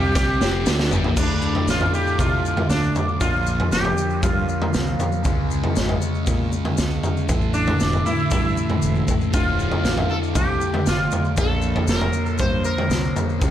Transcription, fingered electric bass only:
0, 0, Header, 1, 2, 480
1, 0, Start_track
1, 0, Key_signature, -1, "minor"
1, 0, Tempo, 510204
1, 1097, Time_signature, 4, 2, 24, 8
1, 12706, End_track
2, 0, Start_track
2, 0, Title_t, "Fingered electric bass"
2, 0, Program_c, 0, 33
2, 0, Note_on_c, 0, 36, 98
2, 346, Note_off_c, 0, 36, 0
2, 384, Note_on_c, 0, 29, 91
2, 604, Note_off_c, 0, 29, 0
2, 625, Note_on_c, 0, 38, 90
2, 845, Note_off_c, 0, 38, 0
2, 861, Note_on_c, 0, 31, 94
2, 971, Note_off_c, 0, 31, 0
2, 982, Note_on_c, 0, 34, 92
2, 1091, Note_off_c, 0, 34, 0
2, 1101, Note_on_c, 0, 38, 83
2, 1462, Note_off_c, 0, 38, 0
2, 1573, Note_on_c, 0, 33, 78
2, 1756, Note_off_c, 0, 33, 0
2, 2060, Note_on_c, 0, 48, 76
2, 2240, Note_off_c, 0, 48, 0
2, 2532, Note_on_c, 0, 38, 78
2, 2714, Note_off_c, 0, 38, 0
2, 3020, Note_on_c, 0, 34, 82
2, 3381, Note_off_c, 0, 34, 0
2, 3495, Note_on_c, 0, 29, 81
2, 3676, Note_off_c, 0, 29, 0
2, 3981, Note_on_c, 0, 43, 83
2, 4161, Note_off_c, 0, 43, 0
2, 4468, Note_on_c, 0, 36, 77
2, 4645, Note_off_c, 0, 36, 0
2, 4938, Note_on_c, 0, 37, 82
2, 5300, Note_off_c, 0, 37, 0
2, 5426, Note_on_c, 0, 32, 82
2, 5604, Note_off_c, 0, 32, 0
2, 5900, Note_on_c, 0, 46, 85
2, 6080, Note_off_c, 0, 46, 0
2, 6382, Note_on_c, 0, 37, 79
2, 6562, Note_off_c, 0, 37, 0
2, 6860, Note_on_c, 0, 33, 89
2, 7222, Note_off_c, 0, 33, 0
2, 7343, Note_on_c, 0, 28, 78
2, 7523, Note_off_c, 0, 28, 0
2, 7825, Note_on_c, 0, 43, 81
2, 8005, Note_off_c, 0, 43, 0
2, 8303, Note_on_c, 0, 28, 75
2, 8483, Note_off_c, 0, 28, 0
2, 8784, Note_on_c, 0, 26, 85
2, 9146, Note_off_c, 0, 26, 0
2, 9258, Note_on_c, 0, 33, 84
2, 9441, Note_off_c, 0, 33, 0
2, 9742, Note_on_c, 0, 36, 83
2, 9923, Note_off_c, 0, 36, 0
2, 10227, Note_on_c, 0, 29, 82
2, 10406, Note_off_c, 0, 29, 0
2, 10705, Note_on_c, 0, 34, 88
2, 11067, Note_off_c, 0, 34, 0
2, 11176, Note_on_c, 0, 29, 89
2, 11360, Note_off_c, 0, 29, 0
2, 11665, Note_on_c, 0, 43, 82
2, 11846, Note_off_c, 0, 43, 0
2, 12134, Note_on_c, 0, 36, 84
2, 12319, Note_off_c, 0, 36, 0
2, 12620, Note_on_c, 0, 37, 87
2, 12706, Note_off_c, 0, 37, 0
2, 12706, End_track
0, 0, End_of_file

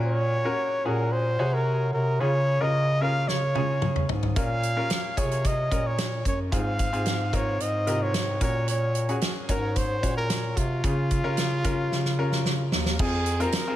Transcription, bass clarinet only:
0, 0, Header, 1, 2, 480
1, 0, Start_track
1, 0, Tempo, 539568
1, 36, Time_signature, 4, 2, 24, 8
1, 12240, End_track
2, 0, Start_track
2, 0, Title_t, "Bass clarinet"
2, 0, Program_c, 0, 71
2, 0, Note_on_c, 0, 46, 80
2, 483, Note_off_c, 0, 46, 0
2, 758, Note_on_c, 0, 46, 73
2, 1205, Note_off_c, 0, 46, 0
2, 1240, Note_on_c, 0, 48, 80
2, 1687, Note_off_c, 0, 48, 0
2, 1721, Note_on_c, 0, 48, 72
2, 1944, Note_off_c, 0, 48, 0
2, 1961, Note_on_c, 0, 49, 93
2, 2296, Note_off_c, 0, 49, 0
2, 2319, Note_on_c, 0, 49, 85
2, 2891, Note_off_c, 0, 49, 0
2, 2925, Note_on_c, 0, 49, 70
2, 3609, Note_off_c, 0, 49, 0
2, 3645, Note_on_c, 0, 44, 75
2, 3868, Note_off_c, 0, 44, 0
2, 3880, Note_on_c, 0, 46, 86
2, 4338, Note_off_c, 0, 46, 0
2, 4603, Note_on_c, 0, 48, 72
2, 5050, Note_off_c, 0, 48, 0
2, 5084, Note_on_c, 0, 46, 74
2, 5531, Note_off_c, 0, 46, 0
2, 5563, Note_on_c, 0, 42, 75
2, 5787, Note_off_c, 0, 42, 0
2, 5803, Note_on_c, 0, 44, 91
2, 6139, Note_off_c, 0, 44, 0
2, 6157, Note_on_c, 0, 44, 84
2, 6731, Note_off_c, 0, 44, 0
2, 6761, Note_on_c, 0, 44, 81
2, 7448, Note_off_c, 0, 44, 0
2, 7480, Note_on_c, 0, 46, 80
2, 8167, Note_off_c, 0, 46, 0
2, 8441, Note_on_c, 0, 44, 74
2, 8925, Note_on_c, 0, 46, 72
2, 8939, Note_off_c, 0, 44, 0
2, 9371, Note_off_c, 0, 46, 0
2, 9401, Note_on_c, 0, 48, 76
2, 9626, Note_off_c, 0, 48, 0
2, 9641, Note_on_c, 0, 49, 91
2, 9977, Note_off_c, 0, 49, 0
2, 9999, Note_on_c, 0, 49, 83
2, 10571, Note_off_c, 0, 49, 0
2, 10600, Note_on_c, 0, 49, 82
2, 11284, Note_off_c, 0, 49, 0
2, 11318, Note_on_c, 0, 39, 79
2, 11542, Note_off_c, 0, 39, 0
2, 11561, Note_on_c, 0, 41, 101
2, 12016, Note_off_c, 0, 41, 0
2, 12240, End_track
0, 0, End_of_file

